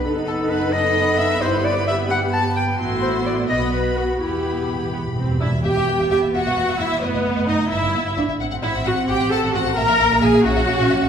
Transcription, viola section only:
\new Staff \with { instrumentName = "Viola section" } { \time 6/8 \key e \minor \tempo 4. = 87 << { a'2. | g'2. | fis'4. fis'4. | g'4. b8 c'8 <d' e'>8 |
g'4 g'8 fis'4 e'8 | b4 dis'8 e'4 r8 | r8 e'8 fis'8 g'8 a'8 fis'8 | ais'4 gis'8 fis'4. | } \\ { b2.~ | b2. | e'4. b4. | b4. r4. |
r2. | r2. | r2. | r2. | } >> }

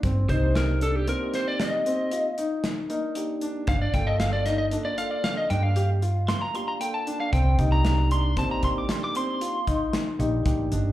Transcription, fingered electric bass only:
\new Staff \with { instrumentName = "Fingered electric bass" } { \clef bass \time 7/4 \key c \dorian \tempo 4 = 115 g,8 c,2 r1 r8 | g,,8 g,,2 r4 g,2 r4. | c,8 c,2 r2. bes,,8 a,,8 g,,8 | }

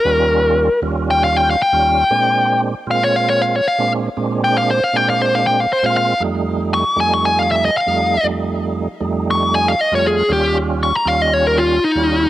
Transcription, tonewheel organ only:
\new Staff \with { instrumentName = "Tonewheel organ" } { \clef bass \time 4/4 \key f \dorian \tempo 4 = 117 <ees, g des' f'>4~ <ees, g des' f'>16 r16 <ees, g des' f'>4. r16 <ees, g des' f'>8 r16 | <bes, aes c' d'>4~ <bes, aes c' d'>16 r16 <bes, aes c' f'>4. r16 <bes, aes c' d'>8 r16 | <bes, aes c' d'>4~ <bes, aes c' d'>16 r16 <bes, aes c' d'>4. r16 <bes, aes c' f'>8 r16 | <f, g a ees'>4~ <f, g a ees'>16 r16 <f, g a ees'>4. r16 <f, g a ees'>8 r16 |
<f, g a ees'>4~ <f, g a ees'>16 r16 <f, g a ees'>4. r16 <f, g a f'>8 r16 | <ees, g des' f'>4~ <ees, g des' f'>16 r16 <ees, g des' f'>4. r16 <ees, g des' f'>8 r16 | }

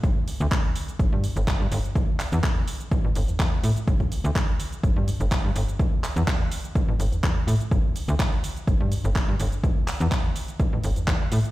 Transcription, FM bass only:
\new Staff \with { instrumentName = "FM bass" } { \clef bass \time 4/4 \key g \lydian \tempo 4 = 125 g,,16 r8 d,16 r4 g,,16 g,16 r16 g,,16 r16 g,16 g,,16 r16 | a,,16 r8 e,16 r4 a,,16 a,,16 g,,16 e,16 e,16 r16 a,16 r16 | g,,16 r8 d,16 r4 g,,16 g,16 r16 g,,16 r16 g,16 g,,16 r16 | a,,16 r8 e,16 r4 a,,16 a,,16 g,,16 e,16 e,16 r16 a,16 r16 |
g,,16 r8 d,16 r4 g,,16 g,16 r16 g,,16 r16 g,16 g,,16 r16 | a,,16 r8 e,16 r4 a,,16 a,,16 g,,16 e,16 e,16 r16 a,16 r16 | }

